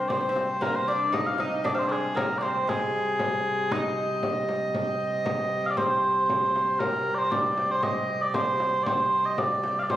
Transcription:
Already playing: pipe organ C3 G3
0.08 lute C4, bagpipes C5 D5, frame drum
0.21 lute C4
0.29 lute C4
0.36 frame drum
0.61 lute A#3, bagpipes A#4, frame drum
0.75 bagpipes C5
0.88 lute D4, bagpipes D5
1.12 lute D#4, bagpipes D#5, frame drum
1.27 bagpipes F5
1.38 lute D#4, bagpipes D#5, frame drum
1.64 lute D4, bagpipes D5, frame drum
1.74 lute C4, bagpipes F5
1.79 bagpipes C5
1.89 lute G#3, bagpipes G#4 D5
2.15 lute A#3, bagpipes A#4, frame drum
2.38 lute C4, bagpipes D5
2.43 bagpipes C5, frame drum
2.67 pipe organ C3 G3, lute G#3, bagpipes G#4, frame drum
3.19 frame drum
3.71 lute D#4, bagpipes D#5, frame drum
4.23 frame drum
4.49 frame drum
4.74 frame drum
5.26 frame drum
5.66 bagpipes F5
5.70 bagpipes D5
5.77 lute C4, bagpipes C5, frame drum
6.30 frame drum
6.56 frame drum
6.79 pipe organ C3 G3, bagpipes A#4, frame drum
7.15 bagpipes C5 D5
7.31 bagpipes D5, frame drum
7.58 frame drum
7.71 bagpipes C5
7.83 bagpipes D#5, frame drum
8.22 bagpipes D5
8.34 bagpipes C5, frame drum
8.60 frame drum
8.83 bagpipes C5 D5, frame drum
9.26 bagpipes D#5
9.38 bagpipes D5, frame drum
9.64 frame drum
9.79 bagpipes D5 F5
9.90 bagpipes C5, frame drum

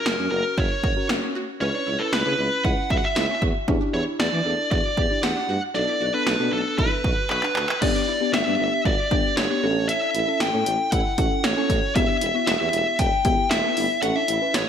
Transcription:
Already playing: lead electric guitar A#4
0.06 tuba F#1, snare
0.19 tuba F#2, synth pluck C#4
0.32 tuba F#1, synth keys C#4 F#4 A#4, lead electric guitar A#4
0.58 tuba F#1, synth pluck E4, lead electric guitar C#5, kick
0.83 tuba F#1, synth pluck F#4, kick
0.96 synth keys C#4 F#4 A#4
1.09 tuba F#1, synth pluck F#4, snare
1.23 synth pluck C#4
1.35 synth pluck F#4
1.61 tuba C#2, synth pluck C#4, synth keys C#4 E4 B4, lead electric guitar C#5
1.74 synth pluck D4
1.87 tuba C#2, synth pluck E4
2.00 synth keys C#4 E4 B4, lead electric guitar A4
2.13 tuba C#2, lead electric guitar B4, snare
2.26 tuba C#3, synth keys C#4 E4 B4, synth pluck C#4
2.39 tuba C#2
2.64 tuba C#2, synth pluck E4, lead electric guitar F#5, kick
2.90 tuba C#2, synth pluck F#4, lead electric guitar E5, kick
2.97 lead electric guitar F#5
3.04 lead electric guitar E5
3.16 tuba C#2, synth pluck E4, snare
3.29 synth pluck C#4
3.42 tuba E2, synth pluck F#4, kick
3.68 tuba E2, synth pluck C#4, synth keys D4 E4 G4, kick
3.81 synth pluck D4
3.94 tuba E2, synth pluck E4, lead electric guitar C#5
4.20 tuba E2, lead electric guitar D5, snare
4.32 tuba E3, synth pluck D4
4.45 tuba E2, synth keys D4 E4 A4
4.71 tuba E2, synth pluck F#4, lead electric guitar D5, kick
4.97 tuba E2, synth pluck G4, kick
5.10 synth keys D4 E4 G4
5.23 tuba E2, synth pluck G4, lead electric guitar F#5, snare
5.36 synth pluck D4
5.49 tuba G2, synth pluck F#4
5.75 tuba B1, synth keys B3 D4 A4, synth pluck D4, lead electric guitar D5
5.88 synth pluck E4
6.01 tuba B1, synth pluck F#4
6.14 synth keys B3 D4 A4, lead electric guitar B4
6.26 tuba B1, snare
6.39 tuba B2, synth keys B3 D4 A4, synth pluck D4
6.52 tuba B1, lead electric guitar A4
6.78 tuba B1, synth pluck E4, lead electric guitar B4, kick
7.04 tuba B1, synth pluck F#4, kick
7.30 tuba B1, synth pluck F#4, lead electric guitar B4, clap
7.43 synth pluck D4, clap
7.56 tuba D2, synth pluck F#4, clap
7.69 clap
7.82 tuba G1, synth keys B3 D4 G4, synth pluck C#4, lead electric guitar D5, kick, crash
7.95 synth pluck D4
8.08 synth pluck E4
8.21 synth keys B3 D4 G4
8.34 tuba G1, lead electric guitar E5, snare
8.46 tuba G2, synth keys B3 D4 G4, synth pluck D4
8.59 tuba G1
8.85 tuba G1, synth pluck F#4, lead electric guitar D5, kick
9.11 tuba G1, synth keys B3 D4 G4, synth pluck G4, kick
9.37 tuba G1, synth pluck G4, lead electric guitar C#5, snare
9.50 synth keys B3 D4 G4, synth pluck D4
9.63 tuba A1, synth keys C#4 E4 A4, synth pluck F#4
9.89 synth pluck C#4, lead electric guitar E5, closed hi-hat
10.02 synth pluck D4
10.14 tuba A1, synth pluck E4, closed hi-hat
10.28 synth keys C#4 E4 A4
10.40 tuba A1, lead electric guitar G5, snare, closed hi-hat
10.53 tuba A2, synth pluck C#4, synth keys C#4 E4 A4
10.66 tuba A1, closed hi-hat
10.92 tuba A1, synth pluck E4, lead electric guitar F#5, kick, closed hi-hat
11.18 tuba A1, synth keys C#4 E4 A4, synth pluck F#4, kick, closed hi-hat
11.44 tuba A1, synth pluck F#4, lead electric guitar C#5, snare, closed hi-hat
11.57 synth pluck C#4, synth keys C#4 E4 A4
11.70 tuba A1, synth pluck F#4, kick, closed hi-hat
11.96 tuba E1, synth keys B3 E4 G4, synth pluck C#4, lead electric guitar E5, kick, closed hi-hat
12.08 synth pluck D4
12.21 tuba E1, synth pluck E4, closed hi-hat
12.34 synth keys B3 E4 F#4
12.47 tuba E1, lead electric guitar E5, snare, closed hi-hat
12.60 tuba E2, synth keys B3 E4 G4, synth pluck C#4
12.73 tuba E1, closed hi-hat
12.99 tuba E1, synth pluck D4, lead electric guitar G5, kick, closed hi-hat
13.25 tuba E1, synth keys B3 E4 G4, synth pluck E4, kick, closed hi-hat
13.51 tuba E1, synth pluck E4, lead electric guitar E5, snare, closed hi-hat
13.64 synth pluck B3, synth keys B3 E4 A4
13.77 tuba G1, synth pluck E4, open hi-hat
14.02 tuba A1, synth pluck C#4, synth keys C#4 E4 A4, lead electric guitar F#5, closed hi-hat
14.15 synth pluck D4, lead electric guitar E5
14.28 tuba A1, synth pluck E4, closed hi-hat
14.41 synth keys C#4 E4 B4
14.54 tuba A1, lead electric guitar C#5, snare, closed hi-hat

